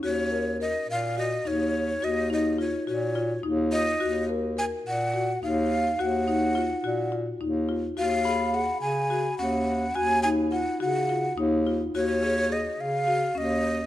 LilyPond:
<<
  \new Staff \with { instrumentName = "Glockenspiel" } { \time 7/8 \key ees \minor \tempo 4 = 106 r2. r8 | r2. r8 | r2. r8 | r2. r8 |
r8 ces'''4. r4. | r2. r8 | r2. r8 | }
  \new Staff \with { instrumentName = "Flute" } { \time 7/8 \key ees \minor des''4 ees''8 f''8 ees''8 des''4 | ees''8 ees''8 des''8 des''4 r8 ees''8~ | ees''8 r8 aes''8 ges''4 f''4 | ges''2 r4. |
f''4 ges''8 aes''4 ges''4 | aes''8 aes''8 ges''8 ges''4 r4 | des''4 ees''8 f''4 ees''4 | }
  \new Staff \with { instrumentName = "Marimba" } { \time 7/8 \key ees \minor ges'8 bes'8 bes'4 ges'8 ees'4 | ges'8 ees'8 f'8 ges'8 f'8 ees'8 f'8 | ges'8 bes'8 bes'4 ges'8 ees'4 | ges'8 ees'8 f'8 ges'8 f'8 ees'8 f'8 |
ges'8 aes'8 aes'4 ges'8 des'4 | ges'8 ees'8 f'8 ges'8 f'8 ees'8 f'8 | ges'8 aes'8 aes'4 ges'8 des'4 | }
  \new Staff \with { instrumentName = "Bass clarinet" } { \clef bass \time 7/8 \key ees \minor ees,4. bes,4 ees,4 | ees,4. bes,4 ees,4 | ees,4. bes,4 ees,4 | ees,4. bes,4 ees,4 |
ees,4. des4 ees,4 | ees,4. des4 ees,4 | ees,4. des4 ees,4 | }
>>